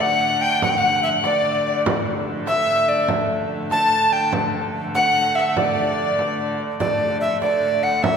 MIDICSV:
0, 0, Header, 1, 5, 480
1, 0, Start_track
1, 0, Key_signature, 2, "major"
1, 0, Tempo, 411523
1, 732, Time_signature, 6, 3, 24, 8
1, 9527, End_track
2, 0, Start_track
2, 0, Title_t, "Fiddle"
2, 0, Program_c, 0, 110
2, 12, Note_on_c, 0, 78, 89
2, 485, Note_off_c, 0, 78, 0
2, 492, Note_on_c, 0, 79, 86
2, 726, Note_on_c, 0, 78, 87
2, 744, Note_off_c, 0, 79, 0
2, 887, Note_off_c, 0, 78, 0
2, 894, Note_on_c, 0, 78, 83
2, 1453, Note_on_c, 0, 74, 78
2, 1470, Note_off_c, 0, 78, 0
2, 1920, Note_off_c, 0, 74, 0
2, 1927, Note_on_c, 0, 74, 64
2, 2152, Note_off_c, 0, 74, 0
2, 2880, Note_on_c, 0, 76, 84
2, 3559, Note_off_c, 0, 76, 0
2, 4323, Note_on_c, 0, 81, 87
2, 5001, Note_off_c, 0, 81, 0
2, 5775, Note_on_c, 0, 78, 91
2, 6219, Note_off_c, 0, 78, 0
2, 6259, Note_on_c, 0, 76, 75
2, 6314, Note_on_c, 0, 78, 59
2, 6331, Note_off_c, 0, 76, 0
2, 6372, Note_on_c, 0, 76, 77
2, 6390, Note_off_c, 0, 78, 0
2, 6491, Note_on_c, 0, 74, 73
2, 6509, Note_off_c, 0, 76, 0
2, 7691, Note_off_c, 0, 74, 0
2, 9527, End_track
3, 0, Start_track
3, 0, Title_t, "Recorder"
3, 0, Program_c, 1, 74
3, 10, Note_on_c, 1, 78, 100
3, 483, Note_on_c, 1, 79, 92
3, 501, Note_off_c, 1, 78, 0
3, 724, Note_off_c, 1, 79, 0
3, 731, Note_on_c, 1, 78, 93
3, 813, Note_on_c, 1, 79, 75
3, 830, Note_off_c, 1, 78, 0
3, 904, Note_on_c, 1, 78, 95
3, 921, Note_off_c, 1, 79, 0
3, 1196, Note_off_c, 1, 78, 0
3, 1203, Note_on_c, 1, 76, 84
3, 1273, Note_off_c, 1, 76, 0
3, 1456, Note_on_c, 1, 74, 80
3, 2127, Note_off_c, 1, 74, 0
3, 2886, Note_on_c, 1, 76, 107
3, 3366, Note_on_c, 1, 74, 88
3, 3384, Note_off_c, 1, 76, 0
3, 3609, Note_off_c, 1, 74, 0
3, 4337, Note_on_c, 1, 81, 104
3, 4813, Note_on_c, 1, 79, 88
3, 4830, Note_off_c, 1, 81, 0
3, 5052, Note_off_c, 1, 79, 0
3, 5771, Note_on_c, 1, 78, 109
3, 6244, Note_on_c, 1, 76, 86
3, 6261, Note_off_c, 1, 78, 0
3, 6497, Note_on_c, 1, 74, 88
3, 6514, Note_off_c, 1, 76, 0
3, 7693, Note_off_c, 1, 74, 0
3, 7930, Note_on_c, 1, 74, 84
3, 8376, Note_off_c, 1, 74, 0
3, 8407, Note_on_c, 1, 76, 84
3, 8632, Note_off_c, 1, 76, 0
3, 8644, Note_on_c, 1, 74, 89
3, 9136, Note_on_c, 1, 78, 86
3, 9153, Note_off_c, 1, 74, 0
3, 9364, Note_on_c, 1, 76, 94
3, 9382, Note_off_c, 1, 78, 0
3, 9527, Note_off_c, 1, 76, 0
3, 9527, End_track
4, 0, Start_track
4, 0, Title_t, "Hurdy-gurdy"
4, 0, Program_c, 2, 110
4, 0, Note_on_c, 2, 50, 64
4, 0, Note_on_c, 2, 57, 66
4, 2167, Note_off_c, 2, 50, 0
4, 2167, Note_on_c, 2, 50, 62
4, 2171, Note_off_c, 2, 57, 0
4, 2171, Note_on_c, 2, 57, 68
4, 7932, Note_off_c, 2, 57, 0
4, 7932, Note_on_c, 2, 57, 64
4, 7933, Note_off_c, 2, 50, 0
4, 7933, Note_on_c, 2, 50, 67
4, 9527, Note_off_c, 2, 50, 0
4, 9527, Note_off_c, 2, 57, 0
4, 9527, End_track
5, 0, Start_track
5, 0, Title_t, "Frame drum"
5, 3, Note_on_c, 9, 64, 60
5, 120, Note_off_c, 9, 64, 0
5, 493, Note_on_c, 9, 64, 25
5, 610, Note_off_c, 9, 64, 0
5, 726, Note_on_c, 9, 64, 78
5, 842, Note_off_c, 9, 64, 0
5, 1445, Note_on_c, 9, 64, 66
5, 1562, Note_off_c, 9, 64, 0
5, 1694, Note_on_c, 9, 64, 27
5, 1811, Note_off_c, 9, 64, 0
5, 2172, Note_on_c, 9, 64, 93
5, 2288, Note_off_c, 9, 64, 0
5, 2412, Note_on_c, 9, 64, 27
5, 2529, Note_off_c, 9, 64, 0
5, 2883, Note_on_c, 9, 64, 69
5, 3000, Note_off_c, 9, 64, 0
5, 3368, Note_on_c, 9, 64, 25
5, 3484, Note_off_c, 9, 64, 0
5, 3598, Note_on_c, 9, 64, 77
5, 3714, Note_off_c, 9, 64, 0
5, 3842, Note_on_c, 9, 64, 24
5, 3958, Note_off_c, 9, 64, 0
5, 4329, Note_on_c, 9, 64, 61
5, 4446, Note_off_c, 9, 64, 0
5, 4808, Note_on_c, 9, 64, 26
5, 4925, Note_off_c, 9, 64, 0
5, 5045, Note_on_c, 9, 64, 81
5, 5162, Note_off_c, 9, 64, 0
5, 5291, Note_on_c, 9, 64, 25
5, 5408, Note_off_c, 9, 64, 0
5, 5776, Note_on_c, 9, 64, 66
5, 5893, Note_off_c, 9, 64, 0
5, 6262, Note_on_c, 9, 64, 24
5, 6379, Note_off_c, 9, 64, 0
5, 6492, Note_on_c, 9, 64, 77
5, 6608, Note_off_c, 9, 64, 0
5, 6745, Note_on_c, 9, 64, 24
5, 6862, Note_off_c, 9, 64, 0
5, 7219, Note_on_c, 9, 64, 61
5, 7336, Note_off_c, 9, 64, 0
5, 7700, Note_on_c, 9, 64, 26
5, 7817, Note_off_c, 9, 64, 0
5, 7934, Note_on_c, 9, 64, 76
5, 8051, Note_off_c, 9, 64, 0
5, 8654, Note_on_c, 9, 64, 59
5, 8771, Note_off_c, 9, 64, 0
5, 8895, Note_on_c, 9, 64, 26
5, 9012, Note_off_c, 9, 64, 0
5, 9140, Note_on_c, 9, 64, 25
5, 9257, Note_off_c, 9, 64, 0
5, 9374, Note_on_c, 9, 64, 85
5, 9491, Note_off_c, 9, 64, 0
5, 9527, End_track
0, 0, End_of_file